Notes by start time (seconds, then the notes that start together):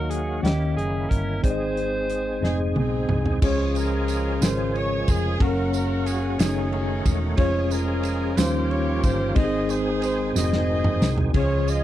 Already playing: D#2 D#3 F#3 A#3 D#4 F#4 A#4 D#5
0.10 G#4, closed hi-hat
0.42 D#2 D#3 A#3 C#4 E4 G4 D#5 G5, snare, closed hi-hat
0.77 F#1 G#4, closed hi-hat
1.09 G1 A#4, kick, closed hi-hat
1.42 G#1 G#2 G#3 C4 D#4 G#4 C5 D5, kick, closed hi-hat
1.50 D#5
1.77 closed hi-hat
2.10 closed hi-hat
2.41 F1 C4 D#4 G#4 D#5, snare
2.76 B1 C4 D#4 G#4, high tom
3.09 C2, mid tom
3.26 floor tom
3.41 C#2 C#3 F3 G#3 C#4 F4 G#4 C#5, kick, crash
3.75 C#4 F4 A#4, ride, tambourine
4.08 ride, tambourine
4.41 G#1 C#4 F4 A#4 C5, snare, ride, tambourine
4.75 C#5, ride
5.08 F1 G#4, kick, ride, tambourine
5.40 F#1 C#3 F#3 A#3 C#4 F#4 A4 A#4, kick, ride
5.48 A#4
5.73 A#4, ride, tambourine
6.06 G#4, ride, tambourine
6.38 F#1 D#3 A3 C#4 D#4 F#4 G#4 C#5, snare, ride, tambourine
6.72 G#4, ride
7.05 E1, kick, ride, tambourine
7.37 F1 F3 G#3 C#4 F4 G#4 C#5, kick, ride
7.70 C#4 F4 A#4, ride, tambourine
8.03 ride, tambourine
8.36 D#2 D#3 F3 G3 A#3 C#4 D#4 F4 G4 C5 C6, snare, ride, tambourine
8.70 C#5, ride
9.03 G1 C5, kick, ride, tambourine
9.35 G#1 G#2 D#3 G#3 C4 D#4 G4 G#4 C5 D#5, kick, ride
9.44 G#4
9.69 C5, ride, tambourine
10.02 C5, ride, tambourine
10.34 F1 C4 D#4 F#4 G#4 D#5, snare, tambourine
10.38 C5
10.53 snare
10.84 mid tom
11.01 C2, snare, tambourine
11.18 floor tom
11.33 C#2 C#3 F3 G#3 C#4 F4 G#4 C#5, kick, ride
11.67 G#4 D#5, ride, tambourine